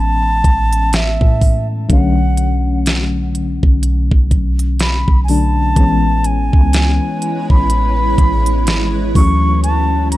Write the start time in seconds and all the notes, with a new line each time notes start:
Already playing: A1 E3 G#3 B3 C#4
0.00 A5
0.44 A1, kick, closed hi-hat
0.73 closed hi-hat
0.93 E5, snare, closed hi-hat
1.21 A2, kick
1.41 kick, open hi-hat
1.89 B1 D3 F#3 A3 F#5, kick, closed hi-hat
1.93 C#4
2.37 closed hi-hat
2.86 snare, closed hi-hat
3.35 closed hi-hat
3.63 B1, kick
3.83 closed hi-hat
4.11 B1, kick
4.31 kick, closed hi-hat
4.59 closed hi-hat
4.79 B5, snare, closed hi-hat
5.08 B1, kick
5.24 G#5
5.28 D3 F#3 A3 D4 A5, open hi-hat
5.76 A1 E3 G#3 B3 E4 B4 C#5, kick, closed hi-hat
5.80 C#4
6.24 G#5, closed hi-hat
6.53 C#2, kick
6.73 snare, closed hi-hat
7.22 closed hi-hat
7.50 A1 B5, kick
7.70 closed hi-hat
8.18 A1, kick, closed hi-hat
8.46 closed hi-hat
8.67 G#1, snare, closed hi-hat
9.14 D2 D3 E3 F#3 A3 C#4 F#4 E5 C#6, kick, open hi-hat
9.19 C#4
9.64 A5, closed hi-hat
10.11 B5, closed hi-hat